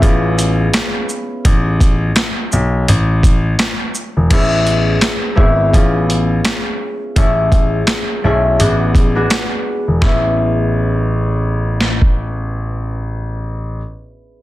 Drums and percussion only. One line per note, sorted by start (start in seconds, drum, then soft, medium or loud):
0.02 kick loud
0.02 closed hi-hat medium
0.39 closed hi-hat medium
0.39 shaker medium
0.74 snare loud
0.74 clap medium
0.74 closed hi-hat medium
1.09 shaker medium
1.45 kick loud
1.45 closed hi-hat loud
1.80 kick medium
1.80 closed hi-hat medium
1.80 shaker medium
2.16 snare loud
2.16 clap medium
2.16 closed hi-hat medium
2.52 shaker medium
2.88 closed hi-hat medium
3.23 kick medium
3.23 closed hi-hat medium
3.23 shaker medium
3.59 snare loud
3.59 clap medium
3.59 closed hi-hat medium
3.95 shaker medium
4.30 kick loud
4.30 closed hi-hat loud
4.30 crash medium
4.67 closed hi-hat soft
5.01 snare loud
5.01 clap medium
5.01 closed hi-hat medium
5.38 kick medium
5.74 kick loud
5.74 closed hi-hat medium
6.10 closed hi-hat medium
6.45 snare loud
6.45 clap medium
6.45 closed hi-hat medium
7.16 kick loud
7.16 closed hi-hat loud
7.52 kick medium
7.52 closed hi-hat soft
7.87 snare loud
7.87 clap medium
7.87 closed hi-hat medium
8.60 closed hi-hat medium
8.95 kick medium
8.95 closed hi-hat medium
9.30 snare loud
9.30 clap medium
9.30 closed hi-hat medium
10.02 kick loud
10.02 snare medium
11.81 snare medium
12.02 kick medium